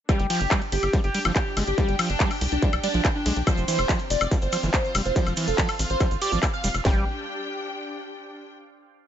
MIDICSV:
0, 0, Header, 1, 6, 480
1, 0, Start_track
1, 0, Tempo, 422535
1, 101, Time_signature, 4, 2, 24, 8
1, 10306, End_track
2, 0, Start_track
2, 0, Title_t, "Analog synth lead"
2, 0, Program_c, 0, 81
2, 101, Note_on_c, 0, 67, 103
2, 228, Note_off_c, 0, 67, 0
2, 342, Note_on_c, 0, 67, 93
2, 594, Note_off_c, 0, 67, 0
2, 821, Note_on_c, 0, 67, 98
2, 1011, Note_off_c, 0, 67, 0
2, 1182, Note_on_c, 0, 67, 94
2, 1371, Note_off_c, 0, 67, 0
2, 1541, Note_on_c, 0, 67, 97
2, 1731, Note_off_c, 0, 67, 0
2, 1902, Note_on_c, 0, 67, 95
2, 2154, Note_off_c, 0, 67, 0
2, 2382, Note_on_c, 0, 62, 97
2, 2634, Note_off_c, 0, 62, 0
2, 2861, Note_on_c, 0, 62, 96
2, 3051, Note_off_c, 0, 62, 0
2, 3222, Note_on_c, 0, 62, 103
2, 3411, Note_off_c, 0, 62, 0
2, 3582, Note_on_c, 0, 62, 96
2, 3771, Note_off_c, 0, 62, 0
2, 3942, Note_on_c, 0, 72, 103
2, 4068, Note_off_c, 0, 72, 0
2, 4181, Note_on_c, 0, 72, 91
2, 4434, Note_off_c, 0, 72, 0
2, 4662, Note_on_c, 0, 74, 95
2, 4851, Note_off_c, 0, 74, 0
2, 5022, Note_on_c, 0, 72, 101
2, 5211, Note_off_c, 0, 72, 0
2, 5381, Note_on_c, 0, 72, 97
2, 5571, Note_off_c, 0, 72, 0
2, 5741, Note_on_c, 0, 72, 99
2, 5994, Note_off_c, 0, 72, 0
2, 6222, Note_on_c, 0, 69, 100
2, 6474, Note_off_c, 0, 69, 0
2, 6702, Note_on_c, 0, 72, 102
2, 6891, Note_off_c, 0, 72, 0
2, 7062, Note_on_c, 0, 74, 99
2, 7251, Note_off_c, 0, 74, 0
2, 7421, Note_on_c, 0, 77, 93
2, 7611, Note_off_c, 0, 77, 0
2, 7782, Note_on_c, 0, 79, 93
2, 7960, Note_off_c, 0, 79, 0
2, 10306, End_track
3, 0, Start_track
3, 0, Title_t, "String section"
3, 0, Program_c, 1, 48
3, 102, Note_on_c, 1, 62, 76
3, 634, Note_on_c, 1, 67, 75
3, 1149, Note_on_c, 1, 79, 87
3, 3942, Note_on_c, 1, 60, 73
3, 4159, Note_on_c, 1, 65, 81
3, 4739, Note_off_c, 1, 67, 0
3, 4841, Note_on_c, 1, 77, 72
3, 5477, Note_off_c, 1, 79, 0
3, 5478, Note_off_c, 1, 62, 0
3, 7781, Note_off_c, 1, 65, 0
3, 7781, Note_off_c, 1, 77, 0
3, 7782, Note_off_c, 1, 60, 0
3, 7782, Note_on_c, 1, 62, 78
3, 7853, Note_on_c, 1, 67, 79
3, 7925, Note_on_c, 1, 79, 78
3, 9656, Note_off_c, 1, 62, 0
3, 9656, Note_off_c, 1, 67, 0
3, 9656, Note_off_c, 1, 79, 0
3, 10306, End_track
4, 0, Start_track
4, 0, Title_t, "Acid bass"
4, 0, Program_c, 2, 38
4, 101, Note_on_c, 2, 55, 104
4, 215, Note_off_c, 2, 55, 0
4, 221, Note_on_c, 2, 55, 77
4, 303, Note_off_c, 2, 55, 0
4, 341, Note_on_c, 2, 53, 104
4, 455, Note_off_c, 2, 53, 0
4, 581, Note_on_c, 2, 55, 104
4, 695, Note_off_c, 2, 55, 0
4, 1061, Note_on_c, 2, 55, 88
4, 1143, Note_off_c, 2, 55, 0
4, 1301, Note_on_c, 2, 55, 110
4, 1350, Note_off_c, 2, 55, 0
4, 1421, Note_on_c, 2, 53, 77
4, 1503, Note_off_c, 2, 53, 0
4, 1781, Note_on_c, 2, 56, 77
4, 1863, Note_off_c, 2, 56, 0
4, 2021, Note_on_c, 2, 55, 104
4, 2135, Note_off_c, 2, 55, 0
4, 2141, Note_on_c, 2, 55, 78
4, 2223, Note_off_c, 2, 55, 0
4, 2261, Note_on_c, 2, 53, 103
4, 2375, Note_off_c, 2, 53, 0
4, 2501, Note_on_c, 2, 55, 102
4, 2615, Note_off_c, 2, 55, 0
4, 2981, Note_on_c, 2, 55, 84
4, 3063, Note_off_c, 2, 55, 0
4, 3222, Note_on_c, 2, 55, 102
4, 3271, Note_off_c, 2, 55, 0
4, 3341, Note_on_c, 2, 53, 75
4, 3423, Note_off_c, 2, 53, 0
4, 3702, Note_on_c, 2, 56, 78
4, 3784, Note_off_c, 2, 56, 0
4, 3941, Note_on_c, 2, 53, 105
4, 4055, Note_off_c, 2, 53, 0
4, 4061, Note_on_c, 2, 53, 80
4, 4143, Note_off_c, 2, 53, 0
4, 4181, Note_on_c, 2, 52, 102
4, 4295, Note_off_c, 2, 52, 0
4, 4421, Note_on_c, 2, 53, 99
4, 4535, Note_off_c, 2, 53, 0
4, 4901, Note_on_c, 2, 53, 88
4, 4983, Note_off_c, 2, 53, 0
4, 5141, Note_on_c, 2, 53, 104
4, 5191, Note_off_c, 2, 53, 0
4, 5261, Note_on_c, 2, 52, 80
4, 5343, Note_off_c, 2, 52, 0
4, 5621, Note_on_c, 2, 55, 79
4, 5703, Note_off_c, 2, 55, 0
4, 5861, Note_on_c, 2, 53, 106
4, 5975, Note_off_c, 2, 53, 0
4, 5981, Note_on_c, 2, 53, 78
4, 6063, Note_off_c, 2, 53, 0
4, 6101, Note_on_c, 2, 52, 100
4, 6215, Note_off_c, 2, 52, 0
4, 6341, Note_on_c, 2, 53, 97
4, 6455, Note_off_c, 2, 53, 0
4, 6821, Note_on_c, 2, 53, 83
4, 6903, Note_off_c, 2, 53, 0
4, 7061, Note_on_c, 2, 67, 81
4, 7176, Note_off_c, 2, 67, 0
4, 7182, Note_on_c, 2, 53, 74
4, 7263, Note_off_c, 2, 53, 0
4, 7542, Note_on_c, 2, 55, 105
4, 7591, Note_off_c, 2, 55, 0
4, 7782, Note_on_c, 2, 55, 97
4, 8005, Note_off_c, 2, 55, 0
4, 10306, End_track
5, 0, Start_track
5, 0, Title_t, "Analog synth bass"
5, 0, Program_c, 3, 38
5, 222, Note_on_c, 3, 31, 79
5, 288, Note_off_c, 3, 31, 0
5, 462, Note_on_c, 3, 31, 78
5, 528, Note_off_c, 3, 31, 0
5, 821, Note_on_c, 3, 31, 93
5, 888, Note_off_c, 3, 31, 0
5, 941, Note_on_c, 3, 31, 83
5, 1008, Note_off_c, 3, 31, 0
5, 1182, Note_on_c, 3, 31, 77
5, 1248, Note_off_c, 3, 31, 0
5, 1422, Note_on_c, 3, 31, 84
5, 1488, Note_off_c, 3, 31, 0
5, 1782, Note_on_c, 3, 31, 95
5, 1848, Note_off_c, 3, 31, 0
5, 1902, Note_on_c, 3, 31, 80
5, 1968, Note_off_c, 3, 31, 0
5, 2142, Note_on_c, 3, 31, 77
5, 2208, Note_off_c, 3, 31, 0
5, 2381, Note_on_c, 3, 31, 83
5, 2448, Note_off_c, 3, 31, 0
5, 2741, Note_on_c, 3, 36, 95
5, 2808, Note_off_c, 3, 36, 0
5, 2861, Note_on_c, 3, 36, 83
5, 2928, Note_off_c, 3, 36, 0
5, 3102, Note_on_c, 3, 35, 76
5, 3168, Note_off_c, 3, 35, 0
5, 3342, Note_on_c, 3, 35, 84
5, 3408, Note_off_c, 3, 35, 0
5, 3701, Note_on_c, 3, 35, 98
5, 3768, Note_off_c, 3, 35, 0
5, 3822, Note_on_c, 3, 35, 79
5, 3888, Note_off_c, 3, 35, 0
5, 4062, Note_on_c, 3, 29, 78
5, 4128, Note_off_c, 3, 29, 0
5, 4301, Note_on_c, 3, 29, 81
5, 4368, Note_off_c, 3, 29, 0
5, 4661, Note_on_c, 3, 29, 93
5, 4728, Note_off_c, 3, 29, 0
5, 4781, Note_on_c, 3, 29, 84
5, 4848, Note_off_c, 3, 29, 0
5, 5022, Note_on_c, 3, 31, 79
5, 5088, Note_off_c, 3, 31, 0
5, 5262, Note_on_c, 3, 31, 85
5, 5328, Note_off_c, 3, 31, 0
5, 5622, Note_on_c, 3, 29, 96
5, 5688, Note_off_c, 3, 29, 0
5, 5742, Note_on_c, 3, 29, 83
5, 5808, Note_off_c, 3, 29, 0
5, 5981, Note_on_c, 3, 29, 76
5, 6048, Note_off_c, 3, 29, 0
5, 6222, Note_on_c, 3, 29, 78
5, 6288, Note_off_c, 3, 29, 0
5, 6582, Note_on_c, 3, 33, 91
5, 6648, Note_off_c, 3, 33, 0
5, 6702, Note_on_c, 3, 33, 87
5, 6768, Note_off_c, 3, 33, 0
5, 6942, Note_on_c, 3, 33, 79
5, 7008, Note_off_c, 3, 33, 0
5, 7182, Note_on_c, 3, 33, 84
5, 7249, Note_off_c, 3, 33, 0
5, 7542, Note_on_c, 3, 29, 98
5, 7609, Note_off_c, 3, 29, 0
5, 7662, Note_on_c, 3, 29, 78
5, 7729, Note_off_c, 3, 29, 0
5, 7781, Note_on_c, 3, 31, 104
5, 8005, Note_off_c, 3, 31, 0
5, 10306, End_track
6, 0, Start_track
6, 0, Title_t, "Drums"
6, 101, Note_on_c, 9, 36, 122
6, 102, Note_on_c, 9, 42, 79
6, 102, Note_on_c, 9, 76, 36
6, 215, Note_off_c, 9, 36, 0
6, 215, Note_off_c, 9, 42, 0
6, 215, Note_off_c, 9, 76, 0
6, 221, Note_on_c, 9, 42, 38
6, 335, Note_off_c, 9, 42, 0
6, 341, Note_on_c, 9, 46, 111
6, 341, Note_on_c, 9, 51, 82
6, 455, Note_off_c, 9, 46, 0
6, 455, Note_off_c, 9, 51, 0
6, 461, Note_on_c, 9, 42, 57
6, 575, Note_off_c, 9, 42, 0
6, 581, Note_on_c, 9, 36, 116
6, 581, Note_on_c, 9, 39, 127
6, 581, Note_on_c, 9, 42, 89
6, 581, Note_on_c, 9, 76, 82
6, 695, Note_off_c, 9, 36, 0
6, 695, Note_off_c, 9, 39, 0
6, 695, Note_off_c, 9, 42, 0
6, 695, Note_off_c, 9, 76, 0
6, 701, Note_on_c, 9, 42, 37
6, 815, Note_off_c, 9, 42, 0
6, 821, Note_on_c, 9, 46, 106
6, 821, Note_on_c, 9, 51, 83
6, 935, Note_off_c, 9, 46, 0
6, 935, Note_off_c, 9, 51, 0
6, 941, Note_on_c, 9, 42, 58
6, 941, Note_on_c, 9, 76, 39
6, 1055, Note_off_c, 9, 42, 0
6, 1055, Note_off_c, 9, 76, 0
6, 1061, Note_on_c, 9, 36, 123
6, 1061, Note_on_c, 9, 42, 82
6, 1175, Note_off_c, 9, 36, 0
6, 1175, Note_off_c, 9, 42, 0
6, 1181, Note_on_c, 9, 42, 40
6, 1295, Note_off_c, 9, 42, 0
6, 1301, Note_on_c, 9, 46, 104
6, 1301, Note_on_c, 9, 51, 75
6, 1415, Note_off_c, 9, 46, 0
6, 1415, Note_off_c, 9, 51, 0
6, 1421, Note_on_c, 9, 42, 55
6, 1421, Note_on_c, 9, 76, 74
6, 1535, Note_off_c, 9, 42, 0
6, 1535, Note_off_c, 9, 76, 0
6, 1541, Note_on_c, 9, 36, 119
6, 1541, Note_on_c, 9, 39, 127
6, 1541, Note_on_c, 9, 42, 87
6, 1654, Note_off_c, 9, 39, 0
6, 1654, Note_off_c, 9, 42, 0
6, 1655, Note_off_c, 9, 36, 0
6, 1781, Note_on_c, 9, 46, 108
6, 1781, Note_on_c, 9, 51, 80
6, 1781, Note_on_c, 9, 76, 40
6, 1895, Note_off_c, 9, 46, 0
6, 1895, Note_off_c, 9, 51, 0
6, 1895, Note_off_c, 9, 76, 0
6, 1901, Note_on_c, 9, 42, 55
6, 2015, Note_off_c, 9, 42, 0
6, 2021, Note_on_c, 9, 36, 125
6, 2021, Note_on_c, 9, 42, 78
6, 2135, Note_off_c, 9, 36, 0
6, 2135, Note_off_c, 9, 42, 0
6, 2141, Note_on_c, 9, 42, 38
6, 2255, Note_off_c, 9, 42, 0
6, 2261, Note_on_c, 9, 46, 115
6, 2261, Note_on_c, 9, 51, 81
6, 2261, Note_on_c, 9, 76, 80
6, 2375, Note_off_c, 9, 46, 0
6, 2375, Note_off_c, 9, 51, 0
6, 2375, Note_off_c, 9, 76, 0
6, 2381, Note_on_c, 9, 42, 59
6, 2495, Note_off_c, 9, 42, 0
6, 2501, Note_on_c, 9, 36, 127
6, 2501, Note_on_c, 9, 39, 127
6, 2501, Note_on_c, 9, 42, 86
6, 2615, Note_off_c, 9, 36, 0
6, 2615, Note_off_c, 9, 39, 0
6, 2615, Note_off_c, 9, 42, 0
6, 2621, Note_on_c, 9, 46, 64
6, 2621, Note_on_c, 9, 76, 39
6, 2735, Note_off_c, 9, 46, 0
6, 2735, Note_off_c, 9, 76, 0
6, 2741, Note_on_c, 9, 46, 114
6, 2741, Note_on_c, 9, 51, 80
6, 2855, Note_off_c, 9, 46, 0
6, 2855, Note_off_c, 9, 51, 0
6, 2861, Note_on_c, 9, 42, 59
6, 2975, Note_off_c, 9, 42, 0
6, 2981, Note_on_c, 9, 36, 127
6, 2981, Note_on_c, 9, 42, 81
6, 3095, Note_off_c, 9, 36, 0
6, 3095, Note_off_c, 9, 42, 0
6, 3101, Note_on_c, 9, 42, 39
6, 3101, Note_on_c, 9, 76, 76
6, 3215, Note_off_c, 9, 42, 0
6, 3215, Note_off_c, 9, 76, 0
6, 3221, Note_on_c, 9, 46, 105
6, 3221, Note_on_c, 9, 51, 76
6, 3335, Note_off_c, 9, 46, 0
6, 3335, Note_off_c, 9, 51, 0
6, 3341, Note_on_c, 9, 42, 53
6, 3455, Note_off_c, 9, 42, 0
6, 3461, Note_on_c, 9, 36, 127
6, 3461, Note_on_c, 9, 39, 127
6, 3461, Note_on_c, 9, 42, 81
6, 3461, Note_on_c, 9, 76, 40
6, 3575, Note_off_c, 9, 36, 0
6, 3575, Note_off_c, 9, 39, 0
6, 3575, Note_off_c, 9, 42, 0
6, 3575, Note_off_c, 9, 76, 0
6, 3701, Note_on_c, 9, 46, 116
6, 3701, Note_on_c, 9, 51, 78
6, 3815, Note_off_c, 9, 46, 0
6, 3815, Note_off_c, 9, 51, 0
6, 3821, Note_on_c, 9, 42, 55
6, 3935, Note_off_c, 9, 42, 0
6, 3941, Note_on_c, 9, 36, 125
6, 3941, Note_on_c, 9, 42, 74
6, 3941, Note_on_c, 9, 76, 76
6, 3946, Note_on_c, 9, 70, 50
6, 4055, Note_off_c, 9, 36, 0
6, 4055, Note_off_c, 9, 42, 0
6, 4055, Note_off_c, 9, 76, 0
6, 4057, Note_off_c, 9, 70, 0
6, 4057, Note_on_c, 9, 70, 27
6, 4062, Note_on_c, 9, 42, 36
6, 4171, Note_off_c, 9, 70, 0
6, 4175, Note_off_c, 9, 42, 0
6, 4182, Note_on_c, 9, 46, 122
6, 4182, Note_on_c, 9, 51, 78
6, 4185, Note_on_c, 9, 70, 88
6, 4295, Note_off_c, 9, 46, 0
6, 4295, Note_off_c, 9, 51, 0
6, 4298, Note_off_c, 9, 70, 0
6, 4302, Note_on_c, 9, 42, 55
6, 4302, Note_on_c, 9, 76, 42
6, 4304, Note_on_c, 9, 70, 43
6, 4415, Note_off_c, 9, 42, 0
6, 4415, Note_off_c, 9, 76, 0
6, 4418, Note_off_c, 9, 70, 0
6, 4421, Note_on_c, 9, 36, 127
6, 4422, Note_on_c, 9, 39, 127
6, 4422, Note_on_c, 9, 42, 82
6, 4422, Note_on_c, 9, 70, 62
6, 4531, Note_off_c, 9, 70, 0
6, 4531, Note_on_c, 9, 70, 29
6, 4535, Note_off_c, 9, 36, 0
6, 4535, Note_off_c, 9, 39, 0
6, 4535, Note_off_c, 9, 42, 0
6, 4542, Note_on_c, 9, 42, 36
6, 4645, Note_off_c, 9, 70, 0
6, 4655, Note_off_c, 9, 42, 0
6, 4661, Note_on_c, 9, 46, 118
6, 4661, Note_on_c, 9, 51, 73
6, 4667, Note_on_c, 9, 70, 96
6, 4775, Note_off_c, 9, 46, 0
6, 4775, Note_off_c, 9, 51, 0
6, 4780, Note_off_c, 9, 70, 0
6, 4782, Note_on_c, 9, 42, 55
6, 4782, Note_on_c, 9, 76, 83
6, 4786, Note_on_c, 9, 70, 39
6, 4895, Note_off_c, 9, 42, 0
6, 4895, Note_off_c, 9, 76, 0
6, 4900, Note_off_c, 9, 70, 0
6, 4901, Note_on_c, 9, 36, 127
6, 4901, Note_on_c, 9, 42, 78
6, 4906, Note_on_c, 9, 70, 59
6, 5015, Note_off_c, 9, 36, 0
6, 5015, Note_off_c, 9, 42, 0
6, 5017, Note_off_c, 9, 70, 0
6, 5017, Note_on_c, 9, 70, 28
6, 5021, Note_on_c, 9, 42, 36
6, 5131, Note_off_c, 9, 70, 0
6, 5135, Note_off_c, 9, 42, 0
6, 5137, Note_on_c, 9, 70, 94
6, 5142, Note_on_c, 9, 46, 112
6, 5142, Note_on_c, 9, 51, 73
6, 5142, Note_on_c, 9, 76, 39
6, 5251, Note_off_c, 9, 70, 0
6, 5255, Note_off_c, 9, 46, 0
6, 5255, Note_off_c, 9, 51, 0
6, 5255, Note_off_c, 9, 76, 0
6, 5262, Note_on_c, 9, 42, 52
6, 5264, Note_on_c, 9, 70, 46
6, 5375, Note_off_c, 9, 42, 0
6, 5378, Note_off_c, 9, 70, 0
6, 5381, Note_on_c, 9, 36, 127
6, 5382, Note_on_c, 9, 39, 127
6, 5382, Note_on_c, 9, 42, 79
6, 5382, Note_on_c, 9, 70, 53
6, 5495, Note_off_c, 9, 36, 0
6, 5495, Note_off_c, 9, 39, 0
6, 5495, Note_off_c, 9, 42, 0
6, 5496, Note_off_c, 9, 70, 0
6, 5501, Note_on_c, 9, 70, 29
6, 5615, Note_off_c, 9, 70, 0
6, 5621, Note_on_c, 9, 46, 112
6, 5621, Note_on_c, 9, 51, 78
6, 5621, Note_on_c, 9, 76, 80
6, 5625, Note_on_c, 9, 70, 106
6, 5735, Note_off_c, 9, 46, 0
6, 5735, Note_off_c, 9, 51, 0
6, 5735, Note_off_c, 9, 76, 0
6, 5739, Note_off_c, 9, 70, 0
6, 5741, Note_on_c, 9, 42, 53
6, 5741, Note_on_c, 9, 70, 40
6, 5855, Note_off_c, 9, 42, 0
6, 5855, Note_off_c, 9, 70, 0
6, 5861, Note_on_c, 9, 36, 121
6, 5861, Note_on_c, 9, 42, 77
6, 5863, Note_on_c, 9, 70, 54
6, 5975, Note_off_c, 9, 36, 0
6, 5975, Note_off_c, 9, 42, 0
6, 5976, Note_off_c, 9, 70, 0
6, 5981, Note_on_c, 9, 42, 36
6, 5981, Note_on_c, 9, 76, 42
6, 5984, Note_on_c, 9, 70, 28
6, 6095, Note_off_c, 9, 42, 0
6, 6095, Note_off_c, 9, 76, 0
6, 6096, Note_off_c, 9, 70, 0
6, 6096, Note_on_c, 9, 70, 89
6, 6101, Note_on_c, 9, 46, 115
6, 6101, Note_on_c, 9, 51, 84
6, 6210, Note_off_c, 9, 70, 0
6, 6215, Note_off_c, 9, 46, 0
6, 6215, Note_off_c, 9, 51, 0
6, 6217, Note_on_c, 9, 70, 43
6, 6221, Note_on_c, 9, 42, 54
6, 6331, Note_off_c, 9, 70, 0
6, 6335, Note_off_c, 9, 42, 0
6, 6341, Note_on_c, 9, 36, 126
6, 6341, Note_on_c, 9, 39, 127
6, 6341, Note_on_c, 9, 42, 87
6, 6344, Note_on_c, 9, 70, 52
6, 6455, Note_off_c, 9, 36, 0
6, 6455, Note_off_c, 9, 39, 0
6, 6455, Note_off_c, 9, 42, 0
6, 6457, Note_off_c, 9, 70, 0
6, 6458, Note_on_c, 9, 70, 27
6, 6461, Note_on_c, 9, 46, 62
6, 6461, Note_on_c, 9, 76, 80
6, 6572, Note_off_c, 9, 70, 0
6, 6575, Note_off_c, 9, 46, 0
6, 6575, Note_off_c, 9, 76, 0
6, 6581, Note_on_c, 9, 46, 113
6, 6581, Note_on_c, 9, 51, 78
6, 6588, Note_on_c, 9, 70, 104
6, 6695, Note_off_c, 9, 46, 0
6, 6695, Note_off_c, 9, 51, 0
6, 6701, Note_off_c, 9, 70, 0
6, 6701, Note_on_c, 9, 42, 54
6, 6702, Note_on_c, 9, 70, 41
6, 6815, Note_off_c, 9, 42, 0
6, 6815, Note_off_c, 9, 70, 0
6, 6818, Note_on_c, 9, 70, 52
6, 6821, Note_on_c, 9, 36, 127
6, 6821, Note_on_c, 9, 42, 74
6, 6821, Note_on_c, 9, 76, 43
6, 6931, Note_off_c, 9, 70, 0
6, 6935, Note_off_c, 9, 36, 0
6, 6935, Note_off_c, 9, 42, 0
6, 6935, Note_off_c, 9, 76, 0
6, 6941, Note_on_c, 9, 42, 36
6, 6945, Note_on_c, 9, 70, 28
6, 7055, Note_off_c, 9, 42, 0
6, 7059, Note_off_c, 9, 70, 0
6, 7061, Note_on_c, 9, 46, 107
6, 7061, Note_on_c, 9, 51, 76
6, 7073, Note_on_c, 9, 70, 106
6, 7175, Note_off_c, 9, 46, 0
6, 7175, Note_off_c, 9, 51, 0
6, 7179, Note_off_c, 9, 70, 0
6, 7179, Note_on_c, 9, 70, 47
6, 7181, Note_on_c, 9, 42, 51
6, 7293, Note_off_c, 9, 70, 0
6, 7295, Note_off_c, 9, 42, 0
6, 7298, Note_on_c, 9, 70, 57
6, 7301, Note_on_c, 9, 36, 127
6, 7301, Note_on_c, 9, 39, 121
6, 7301, Note_on_c, 9, 42, 75
6, 7301, Note_on_c, 9, 76, 83
6, 7412, Note_off_c, 9, 70, 0
6, 7415, Note_off_c, 9, 36, 0
6, 7415, Note_off_c, 9, 39, 0
6, 7415, Note_off_c, 9, 42, 0
6, 7415, Note_off_c, 9, 76, 0
6, 7423, Note_on_c, 9, 70, 26
6, 7536, Note_off_c, 9, 70, 0
6, 7542, Note_on_c, 9, 46, 111
6, 7542, Note_on_c, 9, 51, 80
6, 7544, Note_on_c, 9, 70, 100
6, 7655, Note_off_c, 9, 46, 0
6, 7655, Note_off_c, 9, 51, 0
6, 7657, Note_off_c, 9, 70, 0
6, 7662, Note_on_c, 9, 42, 51
6, 7662, Note_on_c, 9, 76, 40
6, 7663, Note_on_c, 9, 70, 41
6, 7775, Note_off_c, 9, 42, 0
6, 7775, Note_off_c, 9, 76, 0
6, 7777, Note_off_c, 9, 70, 0
6, 7781, Note_on_c, 9, 36, 102
6, 7781, Note_on_c, 9, 38, 107
6, 7781, Note_on_c, 9, 39, 88
6, 7895, Note_off_c, 9, 36, 0
6, 7895, Note_off_c, 9, 38, 0
6, 7895, Note_off_c, 9, 39, 0
6, 10306, End_track
0, 0, End_of_file